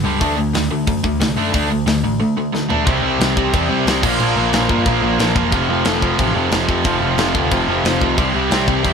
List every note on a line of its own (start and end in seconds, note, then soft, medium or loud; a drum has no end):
0.04 0.20 C#2 medium
0.04 0.19 G2 medium
0.04 0.19 D3 loud
0.04 0.20 G3 loud
0.20 0.53 D2 loud
0.20 0.35 D3 medium
0.20 0.35 A3 medium
0.20 0.37 D4 loud
0.20 kick loud
0.20 open hi-hat soft
0.36 0.52 D3 medium
0.36 0.52 A3 medium
0.53 0.70 D2 medium
0.53 0.69 D3 medium
0.53 0.69 A3 medium
0.53 snare loud
0.53 open hi-hat medium
0.71 0.87 D2 medium
0.71 0.86 D3 medium
0.71 0.86 A3 medium
0.87 1.03 F#2 medium
0.87 1.02 D3 medium
0.87 1.02 A3 medium
0.87 kick loud
0.87 open hi-hat medium
1.04 1.19 D2 medium
1.04 1.19 D3 medium
1.04 1.19 A3 medium
1.04 kick medium
1.20 1.35 C2 loud
1.20 1.35 D3 medium
1.20 1.36 A3 medium
1.20 snare loud
1.20 open hi-hat medium
1.36 1.52 F#2 medium
1.36 1.52 D3 medium
1.36 1.53 A3 loud
1.36 1.53 D4 loud
1.53 1.69 D2 loud
1.53 1.69 D3 medium
1.53 1.70 A3 loud
1.53 1.70 D4 medium
1.53 kick loud
1.53 open hi-hat medium
1.69 1.86 D2 medium
1.69 1.85 D3 medium
1.69 1.85 A3 medium
1.86 2.03 D2 medium
1.86 2.02 D3 medium
1.86 2.02 A3 medium
1.86 snare loud
1.86 open hi-hat medium
2.03 2.19 A1 medium
2.03 2.18 D3 medium
2.03 2.19 A3 medium
2.20 2.35 D3 medium
2.20 2.35 A3 medium
2.37 2.52 D3 medium
2.37 2.52 A3 medium
2.53 2.69 D3 medium
2.53 2.69 A3 medium
2.53 snare medium
2.70 2.86 D3 loud
2.70 2.86 A3 medium
2.70 2.86 D4 loud
2.70 floor tom medium
2.87 3.01 C2 medium
2.87 3.03 C3 medium
2.87 3.03 G3 medium
2.87 3.02 C4 medium
2.87 4.03 E4 loud
2.87 kick loud
2.87 crash medium
3.02 3.17 C2 medium
3.02 3.19 C3 medium
3.02 3.19 G3 medium
3.02 3.20 C4 loud
3.20 3.34 C2 medium
3.20 3.36 C3 medium
3.20 3.35 G3 loud
3.20 3.35 C4 loud
3.20 snare loud
3.20 crash medium
3.36 3.51 C2 medium
3.36 3.52 C3 medium
3.36 3.53 G3 medium
3.36 3.53 C4 loud
3.36 kick medium
3.53 3.68 E2 medium
3.53 3.70 C3 loud
3.53 3.69 G3 loud
3.53 3.68 C4 loud
3.53 kick loud
3.53 crash medium
3.69 3.83 C3 medium
3.69 3.85 C3 medium
3.69 3.86 G3 medium
3.69 3.87 C4 loud
3.85 4.00 C2 loud
3.85 4.02 C3 medium
3.85 4.02 G3 medium
3.85 4.03 C4 medium
3.85 snare loud
3.85 crash medium
4.03 4.17 A#1 medium
4.03 4.20 A#2 loud
4.03 4.20 F3 loud
4.03 4.19 A#3 loud
4.03 5.36 D4 loud
4.03 5.55 F4 loud
4.03 kick loud
4.03 crash loud
4.20 4.34 A#1 loud
4.20 4.35 A#2 medium
4.20 4.36 F3 loud
4.20 4.36 A#3 loud
4.20 crash medium
4.36 4.50 A#1 medium
4.36 4.53 A#2 medium
4.36 4.53 F3 loud
4.36 4.51 A#3 medium
4.53 4.67 A#1 medium
4.53 4.67 A#2 medium
4.53 4.69 F3 medium
4.53 4.69 A#3 loud
4.53 snare loud
4.53 crash medium
4.68 4.84 G2 medium
4.68 4.85 A#2 loud
4.68 4.86 F3 loud
4.68 4.84 A#3 medium
4.68 kick medium
4.85 5.00 A#1 medium
4.85 5.00 A#2 medium
4.85 5.02 F3 loud
4.85 5.02 A#3 loud
4.85 kick loud
4.85 crash medium
5.01 5.17 A#1 medium
5.01 5.19 A#2 medium
5.01 5.19 F3 loud
5.01 5.18 A#3 loud
5.19 5.33 A#1 loud
5.19 5.34 A#2 medium
5.19 5.35 F3 medium
5.19 5.35 A#3 loud
5.19 snare loud
5.19 crash medium
5.35 5.50 E1 medium
5.35 5.51 A#2 loud
5.35 5.53 F3 medium
5.35 5.52 A#3 loud
5.35 kick medium
5.52 5.66 F1 loud
5.52 5.70 F2 loud
5.52 5.68 C3 loud
5.52 5.68 F3 loud
5.52 6.85 A3 medium
5.52 6.87 C4 loud
5.52 6.85 F4 loud
5.52 kick loud
5.52 crash medium
5.69 5.83 F1 medium
5.69 5.85 F2 medium
5.69 5.85 C3 loud
5.69 5.86 F3 loud
5.85 6.00 F1 medium
5.85 6.04 F2 loud
5.85 6.02 C3 loud
5.85 6.03 F3 loud
5.85 snare loud
5.85 crash medium
6.02 6.16 F1 medium
6.02 6.18 F2 medium
6.02 6.18 C3 loud
6.02 6.19 F3 loud
6.02 kick medium
6.19 6.33 A1 medium
6.19 6.36 F2 loud
6.19 6.35 C3 loud
6.19 6.35 F3 loud
6.19 kick loud
6.19 crash medium
6.34 6.49 F2 medium
6.34 6.51 F2 medium
6.34 6.52 C3 medium
6.34 6.52 F3 loud
6.52 6.66 F1 loud
6.52 6.69 F2 medium
6.52 6.69 C3 medium
6.52 6.67 F3 loud
6.52 snare loud
6.52 crash medium
6.69 6.83 F2 medium
6.69 6.84 F2 medium
6.69 6.85 C3 medium
6.69 6.86 F3 loud
6.69 kick medium
6.84 6.99 F1 loud
6.84 7.03 F2 medium
6.84 7.02 C3 loud
6.84 7.01 F3 loud
6.84 8.18 A3 loud
6.84 8.18 C4 loud
6.84 8.18 F4 medium
6.84 kick loud
6.84 crash medium
7.00 7.15 F1 medium
7.00 7.17 F2 medium
7.00 7.18 C3 medium
7.00 7.19 F3 medium
7.17 7.31 F1 medium
7.17 7.35 F2 medium
7.17 7.34 C3 loud
7.17 7.33 F3 loud
7.17 snare loud
7.17 crash medium
7.35 7.49 D2 medium
7.35 7.51 F2 medium
7.35 7.51 C3 medium
7.35 7.52 F3 loud
7.35 kick medium
7.51 7.66 F1 medium
7.51 7.69 F2 loud
7.51 7.68 C3 loud
7.51 7.67 F3 loud
7.51 kick loud
7.51 crash medium
7.68 7.82 F1 medium
7.68 7.84 F2 medium
7.68 7.85 C3 medium
7.68 7.85 F3 loud
7.84 7.98 F1 loud
7.84 8.02 F2 medium
7.84 8.01 C3 medium
7.84 8.00 F3 medium
7.84 snare loud
7.84 crash medium
8.02 8.16 C2 medium
8.02 8.18 F2 medium
8.02 8.16 C3 medium
8.02 8.17 F3 loud
8.02 kick medium
8.17 8.32 C2 loud
8.17 8.34 C3 loud
8.17 8.33 G3 loud
8.17 8.32 C4 loud
8.17 8.93 E4 loud
8.17 kick loud
8.17 crash medium
8.34 8.49 C2 medium
8.34 8.49 C3 medium
8.34 8.50 G3 medium
8.34 8.51 C4 loud
8.51 8.65 C2 medium
8.51 8.68 C3 medium
8.51 8.67 G3 loud
8.51 8.66 C4 loud
8.51 snare loud
8.51 crash medium
8.67 8.82 C2 medium
8.67 8.82 C3 medium
8.67 8.83 G3 medium
8.67 8.83 C4 loud
8.67 kick medium
8.83 8.93 E2 medium
8.83 8.93 C3 loud
8.83 8.93 G3 loud
8.83 8.93 C4 loud
8.83 kick loud
8.83 crash medium